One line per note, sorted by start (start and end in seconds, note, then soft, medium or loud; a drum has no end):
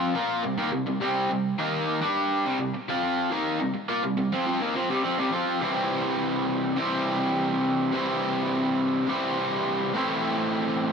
0.00 0.13 F3 medium
0.00 0.14 C4 medium
0.00 0.14 F4 medium
0.15 0.43 A#3 medium
0.15 0.43 F4 medium
0.15 0.43 A#4 medium
0.44 0.57 C3 medium
0.44 0.58 G3 medium
0.58 0.71 D#3 medium
0.58 0.72 A#3 medium
0.72 0.85 C3 medium
0.72 0.85 G3 medium
0.86 0.99 C3 soft
0.86 1.00 G3 medium
1.00 1.28 C3 medium
1.00 1.29 G3 medium
1.00 1.29 C4 medium
1.30 1.53 C3 medium
1.30 1.53 G3 medium
1.58 2.01 D#3 medium
1.58 2.01 A#3 medium
1.58 2.02 D#4 medium
2.02 2.44 G3 medium
2.02 2.44 D4 loud
2.02 2.44 G4 medium
2.45 2.58 C3 medium
2.45 2.59 G3 medium
2.60 2.73 C3 medium
2.60 2.74 G3 medium
2.74 muted overdriven electric guitar stroke medium
2.89 3.31 F3 medium
2.89 3.31 C4 medium
2.89 3.31 F4 medium
3.31 3.59 D#3 medium
3.31 3.59 A#3 medium
3.31 3.60 D#4 medium
3.60 3.74 C3 medium
3.60 3.75 G3 medium
3.75 muted overdriven electric guitar stroke medium
3.89 4.02 A#3 medium
3.89 4.03 F4 medium
4.03 4.16 C3 medium
4.03 4.17 G3 medium
4.17 4.32 C3 medium
4.17 4.32 G3 medium
4.32 4.45 F3 medium
4.32 4.46 C4 medium
4.47 4.60 F3 medium
4.47 4.61 C4 loud
4.62 4.75 D#3 medium
4.62 4.75 A#3 medium
4.76 4.89 F3 medium
4.76 4.90 C4 medium
4.90 5.04 C3 medium
4.90 5.04 G3 medium
5.05 5.18 F3 medium
5.05 5.18 C4 medium
5.19 5.32 C3 medium
5.19 5.33 G3 medium
5.32 5.61 F3 medium
5.32 5.61 C4 medium
5.32 5.61 F4 medium
5.61 6.75 C3 medium
5.61 6.76 E3 medium
5.61 6.77 G3 medium
5.61 6.78 C4 medium
5.61 6.78 E4 medium
5.61 6.80 C5 loud
6.76 7.91 C3 medium
6.76 7.92 E3 medium
6.76 7.93 G3 medium
6.76 7.94 C4 medium
6.76 7.94 E4 medium
6.76 7.95 C5 medium
7.92 9.06 C3 medium
7.92 9.08 E3 medium
7.92 9.09 G3 loud
7.92 9.09 C4 loud
7.92 9.10 E4 medium
7.92 9.10 C5 medium
9.07 9.93 C3 medium
9.07 9.94 E3 medium
9.07 9.95 G3 medium
9.07 9.96 C4 medium
9.07 9.96 E4 medium
9.07 9.97 C5 medium
9.94 10.92 A2 medium
9.94 10.92 E3 medium
9.94 10.92 A3 loud
9.94 10.92 C4 loud
9.94 10.92 E4 loud
9.94 10.92 C5 loud